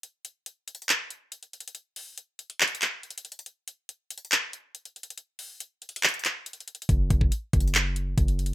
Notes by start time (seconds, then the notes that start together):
0.03 closed hi-hat
0.25 closed hi-hat
0.46 closed hi-hat
0.68 closed hi-hat
0.75 closed hi-hat
0.82 closed hi-hat
0.89 clap, closed hi-hat
1.10 closed hi-hat
1.32 closed hi-hat
1.43 closed hi-hat
1.53 closed hi-hat
1.60 closed hi-hat
1.68 closed hi-hat
1.75 closed hi-hat
1.96 open hi-hat
2.18 closed hi-hat
2.39 closed hi-hat
2.50 closed hi-hat
2.60 clap, closed hi-hat
2.68 closed hi-hat
2.75 closed hi-hat
2.82 clap, closed hi-hat
3.03 closed hi-hat
3.10 closed hi-hat
3.18 closed hi-hat
3.25 closed hi-hat
3.32 closed hi-hat
3.39 closed hi-hat
3.46 closed hi-hat
3.68 closed hi-hat
3.89 closed hi-hat
4.10 closed hi-hat
4.18 closed hi-hat
4.25 closed hi-hat
4.32 clap, closed hi-hat
4.53 closed hi-hat
4.75 closed hi-hat
4.85 closed hi-hat
4.96 closed hi-hat
5.03 closed hi-hat
5.10 closed hi-hat
5.18 closed hi-hat
5.39 open hi-hat
5.60 closed hi-hat
5.82 closed hi-hat
5.89 closed hi-hat
5.96 closed hi-hat
6.03 clap, closed hi-hat
6.09 closed hi-hat
6.14 closed hi-hat
6.19 closed hi-hat
6.25 clap, closed hi-hat
6.46 closed hi-hat
6.53 closed hi-hat
6.60 closed hi-hat
6.68 closed hi-hat
6.75 closed hi-hat
6.82 closed hi-hat
6.89 F#1, kick, closed hi-hat
7.10 F#1, kick, closed hi-hat
7.21 kick
7.32 closed hi-hat
7.53 F#1, kick, closed hi-hat
7.60 closed hi-hat
7.68 closed hi-hat
7.75 clap, closed hi-hat
7.96 closed hi-hat
8.18 F#1, kick, closed hi-hat
8.28 closed hi-hat
8.39 closed hi-hat
8.46 closed hi-hat